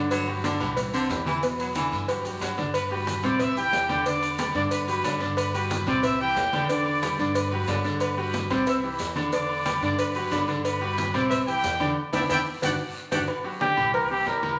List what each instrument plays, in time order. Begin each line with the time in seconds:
Already playing: upright bass G2, grand piano D3 D4 D5
0.11 baritone saxophone F#3, cowbell, high conga, low agogo, long guiro, maracas
0.28 grand piano F#3 F#4 G4, high conga, low agogo
0.44 grand piano D3 D4 D5, baritone saxophone D3, cowbell, high conga, low timbale, short guiro, maracas
0.60 upright bass C2, grand piano E3 E4 G4, cowbell, low conga, low agogo, short guiro, maracas
0.77 cowbell, high conga, low conga, low agogo, long guiro, maracas
0.93 grand piano C3 C4 C5, baritone saxophone D3, high conga, maracas
1.09 upright bass E2, grand piano E3 E4 G4, cowbell, high conga, low timbale, low agogo, short guiro, maracas
1.26 baritone saxophone E3, cowbell, high conga, low agogo, short guiro, maracas
1.42 grand piano B2 B3 B4, cowbell, high conga, long guiro, maracas
1.59 baritone saxophone F#3, high conga, low agogo, maracas
1.75 grand piano D3 D4 E4, baritone saxophone E3, cowbell, high conga, low timbale, low agogo, short guiro, maracas
1.92 upright bass G2, cowbell, high conga, short guiro, maracas
2.08 grand piano F#3 F#4 G4, cowbell, high conga, low agogo, long guiro, maracas
2.24 upright bass F#2, grand piano G3 F#4 G4, high conga, low agogo, maracas
2.41 upright bass G2, baritone saxophone F#3, cowbell, high conga, low timbale, low agogo, short guiro, maracas
2.58 grand piano D3 D4 D5, cowbell, high conga, short guiro, maracas
2.74 trumpet section B4 B5, cowbell, high conga, low agogo, long guiro, maracas
2.90 grand piano G3 F#4 G4, trumpet section B4 B5, high conga, low agogo
3.07 cowbell, high conga, low timbale, short guiro, maracas
3.23 upright bass C2, grand piano C3 C4 C5, trumpet section D5 D6, cowbell, low conga, low agogo, short guiro, maracas
3.39 trumpet section E5 E6, cowbell, high conga, low conga, low agogo, long guiro, maracas
3.56 grand piano E3 E4 G4, trumpet section G4 G5, high conga, maracas
3.72 upright bass E2, cowbell, high conga, low timbale, low agogo, short guiro, maracas
3.89 grand piano D3 D4 D5, cowbell, high conga, low agogo, short guiro, maracas
4.06 grand piano D3 D4 D5, trumpet section D5 D6, cowbell, high conga, long guiro, maracas
4.23 high conga, low agogo, maracas
4.38 grand piano G3 G4 B4, cowbell, high conga, low timbale, low agogo, short guiro, maracas
4.54 upright bass G2, grand piano D3 D4 D5, trumpet section D5 D6, cowbell, high conga, short guiro, maracas
4.71 trumpet section B4 B5, cowbell, high conga, low agogo, long guiro, maracas
4.88 grand piano F#3 F#4 G4, trumpet section B4 B5, high conga, low agogo, maracas
5.04 upright bass G2, grand piano D3 D4 D5, cowbell, high conga, low timbale, low agogo, short guiro, maracas
5.20 grand piano D3 D4 D5, cowbell, short guiro, maracas
5.37 trumpet section B4 B5, cowbell, high conga, low agogo, long guiro, maracas
5.53 grand piano G3 F#4 G4, trumpet section B4 B5, high conga, low agogo, maracas
5.70 cowbell, high conga, low timbale, short guiro, maracas
5.86 upright bass C2, grand piano C3 C4 C5, trumpet section D5 D6, cowbell, low conga, low agogo, short guiro, maracas
6.03 trumpet section E5 E6, cowbell, high conga, low conga, low agogo, long guiro, maracas
6.20 grand piano E3 E4 G4, trumpet section G4 G5, high conga
6.36 upright bass E2, cowbell, high conga, low timbale, low agogo, short guiro, maracas
6.53 grand piano D3 D4 D5, cowbell, high conga, low agogo, short guiro, maracas
6.69 grand piano D3 D4 D5, trumpet section D5 D6, cowbell, high conga, long guiro, maracas
6.86 high conga, low agogo
7.03 grand piano G3 G4 B4, cowbell, high conga, low timbale, low agogo, short guiro, maracas
7.18 upright bass G2, grand piano D3 D4 D5, trumpet section D5 D6, cowbell, high conga, short guiro, maracas
7.35 trumpet section B4 B5, cowbell, high conga, low agogo, maracas
7.51 grand piano F#3 F#4 G4, trumpet section B4 B5, high conga, low agogo
7.67 upright bass G2, grand piano D3 D4 D5, cowbell, high conga, low timbale, low agogo, short guiro, maracas
7.84 grand piano D3 D4 D5, cowbell, short guiro, maracas
8.00 trumpet section B4 B5, cowbell, high conga, low agogo, long guiro, maracas
8.17 grand piano G3 F#4 G4, trumpet section B4 B5, high conga, low agogo
8.33 cowbell, high conga, low timbale, short guiro, maracas
8.50 upright bass C2, grand piano C3 C4 C5, trumpet section D5 D6, cowbell, low conga, low agogo, short guiro, maracas
8.67 trumpet section E5 E6, cowbell, low agogo, long guiro, maracas
8.83 grand piano E3 E4 G4, high conga
8.99 upright bass E2, cowbell, high conga, low timbale, low agogo, short guiro, maracas
9.16 grand piano D3 D4 D5, cowbell, high conga, low agogo, short guiro, maracas
9.32 grand piano D3 D4 D5, trumpet section D5 D6, cowbell, high conga, long guiro, maracas
9.49 high conga, low agogo
9.66 grand piano G3 G4 B4, cowbell, high conga, low timbale, low agogo, short guiro, maracas
9.81 upright bass G2, grand piano D3 D4 D5, trumpet section D5 D6, cowbell, high conga, short guiro, maracas
9.98 trumpet section B4 B5, cowbell, high conga, low agogo, long guiro, maracas
10.15 grand piano F#3 F#4 G4, trumpet section B4 B5, high conga, low agogo, maracas
10.31 upright bass G2, grand piano D3 D4 D5, cowbell, high conga, low timbale, low agogo, short guiro, maracas
10.48 grand piano D3 D4 D5, cowbell, short guiro, maracas
10.64 trumpet section B4 B5, cowbell, high conga, low agogo, maracas
10.80 grand piano G3 F#4 G4, trumpet section B4 B5, high conga, low agogo
10.98 cowbell, high conga, low timbale, short guiro, maracas
11.13 upright bass C2, grand piano C3 C4 C5, trumpet section D5 D6, cowbell, low conga, low agogo, short guiro, maracas
11.30 trumpet section E5 E6, cowbell, high conga, low conga, low agogo, maracas
11.46 grand piano E3 E4 G4, trumpet section G4 G5, high conga, maracas
11.64 upright bass E2, cowbell, high conga, low timbale, low agogo, short guiro, maracas
11.80 grand piano D3 D4 D5, cowbell, high conga, low agogo, short guiro, maracas
12.13 upright bass E2, grand piano B3 D4 E4, trumpet section D5 E5 G5, cowbell, high conga, high timbale, long guiro, maracas
12.29 upright bass E2, grand piano B3 D4 E4, trumpet section D5 E5 G5, cowbell, high conga, high timbale, long guiro, maracas
12.62 upright bass G1, grand piano D4 F#4 G4, trumpet section D5 F#5 G5, cowbell, high conga, high timbale, long guiro, maracas
13.12 upright bass G1, grand piano D4 F#4 G4, trumpet section D5 F#5 G5, cowbell, high conga, high timbale, maracas
13.28 cowbell, high conga, low agogo, long guiro
13.44 grand piano F#3 F#4 G4, high conga, low agogo
13.61 grand piano D3 D4 D5, trumpet G4, cowbell, high conga, low timbale, short guiro
13.77 upright bass C2, grand piano E3 E4 G4, cowbell, low conga, low agogo, short guiro
13.94 trumpet A#4, cowbell, high conga, low agogo, long guiro
14.10 grand piano C3 C4 C5, trumpet G4, high conga
14.26 upright bass E2, grand piano E3 E4 G4, trumpet A#4, cowbell, high conga, low timbale, low agogo, short guiro
14.43 cowbell, high conga, low agogo, short guiro